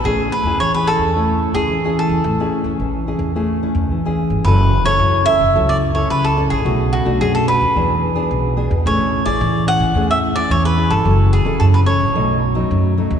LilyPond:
<<
  \new Staff \with { instrumentName = "Cavaquinho" } { \time 4/4 \key a \major \tempo 4 = 109 gis'8 b'8 cis''16 b'16 a'4~ a'16 gis'8. a'8~ | a'2.~ a'8 r8 | \key fis \minor b'8. cis''8. e''8. d''8 cis''16 b'16 a'8 gis'16~ | gis'8 fis'8 gis'16 a'16 b'2 r8 |
cis''8. d''8. fis''8. e''8 d''16 cis''16 b'8 a'16~ | a'8 gis'8 a'16 b'16 cis''2 r8 | }
  \new Staff \with { instrumentName = "Nylon-string guitar" } { \time 4/4 \key a \major << { <cis' e' gis'>8 r16 <cis' e' gis'>8 <cis' e' gis'>8. <cis' e'>8. <cis' e' gis'>8 <cis' e' gis'>8. | r16 <cis' e' gis'>8 <cis' e'>8. <cis' e' gis'>8 <cis' e' gis'>8 <cis' e'>8. <cis' e' gis'>8. | \key fis \minor <cis' e' a'>8 r16 <cis' e' a'>8. <cis' e' a'>16 r16 <cis' e' a'>8. <cis' e' a'>8. <cis' e' a'>16 r16 | <a d' fis'>8 r16 <a d' fis'>8. <a d' fis'>16 r16 <b d' gis'>8. <b d' gis'>8. <b d' gis'>16 r16 |
<cis' e' gis'>8. <e' gis'>8. <cis' e' gis'>8 <cis' e' gis'>8. <cis' e' gis'>8. <cis' e' gis'>8 | <cis' e' a'>8 r16 <cis' e' a'>8. <cis' e' a'>16 r16 <fis a dis'>8 r16 <fis a dis'>8. <fis a dis'>8 | } \\ { a4 e4 a4 e4 | a4 e4 a4 e4 | fis4 cis4 fis4 cis4 | b,4 fis,4 e4 b,4 |
a4 e4 a4 e4 | fis4 cis4 b,4 fis,4 | } >> }
  \new Staff \with { instrumentName = "Upright bass" } { \clef bass \time 4/4 \key a \major a,,8 r16 e,16 a,,8. e,4 e,16 a,,8. e,16 | a,,8 r16 e,16 a,,8. e,4 e,16 a,,8. g,,16 | \key fis \minor fis,,8. fis,,16 fis,8. fis,,16 cis,4 cis,8. a,,16 | b,,8. b,,16 b,8. dis,16 e,4 b,,8. e,16 |
a,,8. a,,16 a,8. a,,16 e,4 e,8. g,,16 | fis,,8. fis,,16 fis,8. a,,16 b,,4 fis,8. dis,16 | }
>>